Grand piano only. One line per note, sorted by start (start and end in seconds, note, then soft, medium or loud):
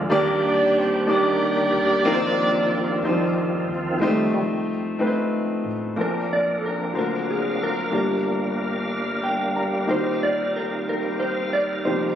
0.00 0.12 A#2 medium
0.00 0.10 A#3 medium
0.00 0.10 D4 medium
0.00 0.12 F4 medium
0.00 0.12 G#4 medium
0.00 0.12 D5 medium
0.10 1.04 D#3 medium
0.10 0.77 A#3 medium
0.10 0.77 D4 medium
0.10 0.78 G4 medium
0.10 0.78 D5 loud
1.07 1.75 A#3 medium
1.07 1.75 D4 medium
1.07 1.75 D#4 medium
1.07 1.75 G4 medium
1.07 1.76 D5 medium
2.05 2.72 A#3 loud
2.05 2.73 C4 loud
2.05 2.73 D#4 medium
2.05 2.73 F4 medium
2.05 2.13 A#4 medium
2.13 2.77 C5 loud
3.03 3.10 G3 medium
3.03 3.70 C4 medium
3.03 3.71 D#4 medium
3.03 3.71 F4 medium
3.03 3.71 C5 medium
3.09 3.73 F3 medium
4.00 4.07 G#3 medium
4.00 4.68 C4 medium
4.00 4.69 D#4 medium
4.00 4.69 F4 medium
4.00 4.69 C5 medium
4.07 4.71 A3 medium
4.99 5.66 A3 medium
4.99 5.66 C4 medium
4.99 5.66 D#4 medium
4.99 5.67 F4 medium
4.99 5.06 B4 medium
5.07 5.70 C5 medium
5.96 6.91 A#1 soft
5.96 6.90 A#2 soft
5.96 6.91 A#3 soft
5.96 6.92 D4 soft
5.96 6.92 F4 soft
5.96 6.93 C5 soft
5.96 6.95 A5 soft
6.92 7.88 D2 soft
6.92 7.88 D3 soft
6.92 7.89 A#3 soft
6.92 7.90 D4 soft
6.92 7.91 F4 soft
6.92 7.92 F#4 soft
6.92 7.92 C5 medium
7.91 9.84 G1 soft
7.91 9.85 G2 soft
7.91 9.84 A#3 soft
7.91 9.84 D4 soft
7.91 9.85 F4 soft
7.91 9.85 G4 soft
7.91 9.86 A#4 medium
9.23 9.54 G5 soft
9.56 9.86 A#5 soft
9.86 11.81 D#2 soft
9.86 11.81 D#3 soft
9.86 11.80 A#3 soft
9.86 11.80 D#4 soft
9.86 11.81 F4 soft
9.86 9.95 F#4 soft
9.91 11.82 C5 soft
9.96 11.85 G4 soft
11.84 12.15 F1 soft
11.84 12.15 F2 soft
11.84 12.15 A#3 soft
11.84 12.15 D#4 soft
11.84 12.15 F4 soft
11.84 12.15 G4 soft
11.88 12.15 C5 soft